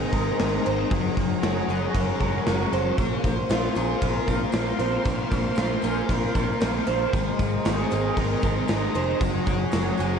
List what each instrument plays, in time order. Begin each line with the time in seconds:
Already playing: distorted electric guitar G#3 D#4 A#4, overdriven electric guitar G#3 C4, analog synth pad G#4 C5 D#5 A#5, twelve-string acoustic guitar A#4
0.13 picked electric bass G#1, distorted electric guitar G#3, overdriven electric guitar A#4, kick, open hi-hat
0.39 picked electric bass G#1, distorted electric guitar C4, overdriven electric guitar D#4, snare, open hi-hat
0.64 picked electric bass G#1, overdriven electric guitar C4, distorted electric guitar D#4, twelve-string acoustic guitar C5, open hi-hat
0.89 picked electric bass F#1, distorted electric guitar F#3, overdriven electric guitar F#3, analog synth pad C#5 F#5, kick, open hi-hat
1.17 picked electric bass F#1, overdriven electric guitar G#3, kick, open hi-hat
1.42 picked electric bass F#1, overdriven electric guitar C#4, distorted electric guitar F#4, twelve-string acoustic guitar F#4, snare, open hi-hat
1.68 picked electric bass F#1, overdriven electric guitar G#3, twelve-string acoustic guitar G#4, distorted electric guitar A#4, open hi-hat
1.94 picked electric bass F#1, overdriven electric guitar C#4, distorted electric guitar F#4, twelve-string acoustic guitar A#4, kick, open hi-hat
2.20 picked electric bass F#1, distorted electric guitar G#3, overdriven electric guitar A#4, kick, open hi-hat
2.46 picked electric bass F#1, distorted electric guitar C#4, overdriven electric guitar F#4, snare, open hi-hat
2.72 picked electric bass F#1, overdriven electric guitar C#4, distorted electric guitar F#4, twelve-string acoustic guitar C5, open hi-hat
2.98 picked electric bass A#1, overdriven electric guitar A#3, distorted electric guitar A#3, analog synth pad A#4 C5 F5 C6, kick, open hi-hat, tambourine
3.24 picked electric bass A#1, overdriven electric guitar A#3, kick, open hi-hat, tambourine
3.49 picked electric bass A#1, overdriven electric guitar C4, twelve-string acoustic guitar F4, distorted electric guitar F4, snare, open hi-hat, tambourine
3.64 snare
3.75 picked electric bass A#1, overdriven electric guitar A#3, twelve-string acoustic guitar G#4, distorted electric guitar A#4, open hi-hat, tambourine
4.02 picked electric bass A#1, overdriven electric guitar C4, distorted electric guitar F4, twelve-string acoustic guitar A#4, kick, open hi-hat, tambourine
4.27 picked electric bass A#1, distorted electric guitar A#3, overdriven electric guitar A#4, kick, open hi-hat, tambourine
4.52 picked electric bass A#1, distorted electric guitar C4, overdriven electric guitar F4, snare, open hi-hat, tambourine
4.79 picked electric bass A#1, overdriven electric guitar C4, distorted electric guitar F4, twelve-string acoustic guitar C5, open hi-hat
5.05 picked electric bass A#1, distorted electric guitar A#3, overdriven electric guitar A#3, kick, open hi-hat, tambourine
5.31 picked electric bass A#1, overdriven electric guitar A#3, kick, open hi-hat, tambourine
5.56 picked electric bass A#1, overdriven electric guitar C4, twelve-string acoustic guitar F4, distorted electric guitar F4, snare, open hi-hat, tambourine
5.82 picked electric bass A#1, overdriven electric guitar A#3, twelve-string acoustic guitar G#4, distorted electric guitar A#4, open hi-hat, tambourine
6.09 picked electric bass A#1, overdriven electric guitar C4, distorted electric guitar F4, twelve-string acoustic guitar A#4, kick, open hi-hat, tambourine
6.34 picked electric bass A#1, distorted electric guitar A#3, overdriven electric guitar A#4, kick, open hi-hat, tambourine
6.60 picked electric bass A#1, distorted electric guitar C4, overdriven electric guitar F4, snare, open hi-hat, tambourine
6.87 picked electric bass A#1, overdriven electric guitar C4, distorted electric guitar F4, twelve-string acoustic guitar C5, open hi-hat
7.12 picked electric bass G#1, distorted electric guitar G#3, overdriven electric guitar G#3, analog synth pad G#4 D#5 A#5, kick, open hi-hat, tambourine
7.39 picked electric bass G#1, overdriven electric guitar G#3, kick, open hi-hat, tambourine
7.65 picked electric bass G#1, overdriven electric guitar C4, distorted electric guitar D#4, twelve-string acoustic guitar F#4, snare, open hi-hat, tambourine
7.78 snare
7.91 picked electric bass G#1, overdriven electric guitar G#3, twelve-string acoustic guitar G#4, distorted electric guitar A#4, open hi-hat, tambourine
8.17 picked electric bass G#1, overdriven electric guitar C4, distorted electric guitar D#4, twelve-string acoustic guitar A#4, kick, open hi-hat, tambourine
8.42 picked electric bass G#1, distorted electric guitar G#3, overdriven electric guitar A#4, kick, open hi-hat, tambourine
8.68 picked electric bass G#1, distorted electric guitar C4, overdriven electric guitar D#4, snare, open hi-hat, tambourine
8.95 picked electric bass F1, overdriven electric guitar C4, distorted electric guitar D#4, twelve-string acoustic guitar C5, open hi-hat
9.20 picked electric bass F#1, distorted electric guitar F#3, overdriven electric guitar F#3, analog synth pad G#4 C#5 F#5, kick, open hi-hat, tambourine
9.46 picked electric bass F#1, overdriven electric guitar F#3, kick, open hi-hat, tambourine
9.72 picked electric bass F#1, overdriven electric guitar A#3, distorted electric guitar C#4, twelve-string acoustic guitar F#4, snare, open hi-hat, tambourine
9.98 picked electric bass F#1, overdriven electric guitar F#3, distorted electric guitar G#4, twelve-string acoustic guitar G#4, open hi-hat, tambourine